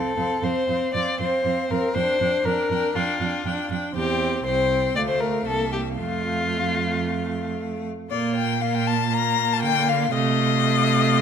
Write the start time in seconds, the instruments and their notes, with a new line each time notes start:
Already playing: viola C4, violin A4 F5
0.16 cello F2, viola C4, violin F5
0.42 cello F2, viola C4, violin C5 F5
0.68 cello F2, viola C4, violin F5
0.93 cello F2, viola C4, violin D5 F5
1.19 cello F2, viola C4, violin C5 F5
1.45 cello F2, viola C4, violin F5
1.70 cello F2, viola C4, violin A#4 F5
1.95 cello F2, viola D4, violin C5 G5
2.21 cello F2, viola D4, violin G5
2.45 cello F2, viola D4, violin A#4 G5
2.71 cello F2, viola D4, violin G5
2.95 cello F2, viola D4, violin F4 G5
3.20 cello F2, viola D4, violin G5
3.46 cello F2, viola D4, violin G5
3.70 cello F2, viola D4, violin G5
3.95 cello E2, viola C4, violin G4 G5
4.44 cello C2, viola C4, violin C5 G5
4.95 cello D2, viola A3, violin D5 F5
5.08 violin C5
5.20 violin A#4
5.46 cello C2, viola A#3, violin A4 E5
5.72 violin G4
5.98 cello F2, viola A3, violin F4 F5
8.10 cello A#2, viola A#3, violin F4 D5
8.36 violin G5
8.61 viola A#3, violin F4 F5
8.75 violin G5
8.87 violin A5
9.13 viola A#3, violin F4 A#5
9.53 violin A5
9.62 cello D3, violin G5
9.89 violin F5
10.13 cello C3, viola A3, violin F4 D#5